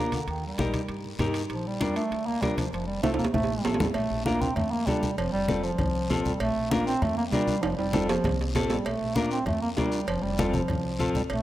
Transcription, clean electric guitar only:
Already playing: D4 F4
0.00 A#4
0.59 D#4 G4 A#4
1.20 D#4 G4 A#4
1.80 D4 F4 A#4
2.43 D4 F4 A#4
3.03 C4 F4 A4
3.65 C4 F4 A4
4.26 D4 F4 A#4
4.88 D4 F4 A4
5.48 C4 F4 A4
6.10 C4 F4 A4
6.72 D4 F4 A#4
7.33 D4 F4 A#4
7.93 C4 F4 A4
8.55 C4 F4 A4
9.16 D4 F4 A#4
9.77 D4 F4 A#4
10.38 C4 F4 A4
10.99 C4 F4 A4

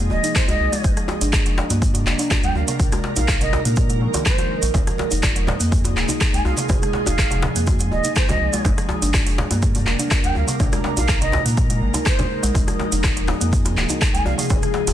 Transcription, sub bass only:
Already playing: F2
0.11 D#1
0.48 C2
0.60 C2
0.84 G1
1.21 G1
1.46 F1
1.70 G2
2.06 F1
2.43 D2
2.55 D2
2.80 A#1
3.17 A#1
3.41 G#1
3.65 A#2
4.62 A#1
4.75 F1
5.12 F1
5.36 D#1
5.60 F2
5.96 D#1
6.34 C2
6.45 C2
6.70 F1
7.07 F1
7.31 D#1
7.56 F2
7.92 D#1
8.29 C2
8.41 C2
8.65 G1
9.02 G1
9.26 F1
9.51 G2
9.87 F1
10.24 D2
10.36 D2
10.60 A#1
10.97 A#1
11.21 G#1
11.46 A#2
11.82 G#1
12.43 A#1
12.55 F1
12.92 F1
13.17 D#1
13.41 F2
13.77 D#1
14.14 C2
14.26 C2
14.50 F1
14.87 F1

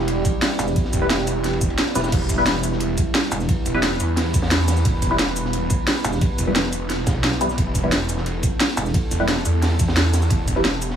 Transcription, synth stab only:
1.02 G3 E4 B4
1.95 G3 E4 B4
2.38 G3 E4 B4
3.74 G3 E4 B4
5.11 G3 E4 B4
6.47 G3 E4 B4
7.41 G3 E4 B4
7.83 G3 E4 B4
9.20 G3 E4 B4
10.56 G3 E4 B4

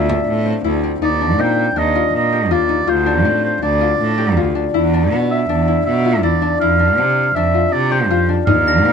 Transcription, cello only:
Already playing: D2
0.28 A2
0.65 D2
1.01 D#2
1.38 A#2
1.76 D#2
2.13 A#2
2.51 D#2
2.89 D2
3.25 A2
3.63 D2
4.01 A2
4.38 D2
4.74 E2
5.13 B2
5.49 E2
5.86 B2
6.24 E2
6.61 F2
6.99 C3
7.35 F2
7.72 C3
8.09 F2
8.47 D#2
8.84 A#2

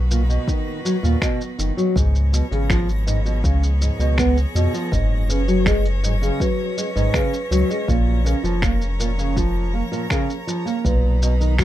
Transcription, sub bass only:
Already playing: B1
1.03 D#2
1.59 F#1
1.96 C#2
2.51 G#1
3.44 C#2
3.99 C#2
4.55 F2
4.92 F#1
6.96 G#1
7.51 C#2
7.88 A#1
8.43 F1
10.85 B1

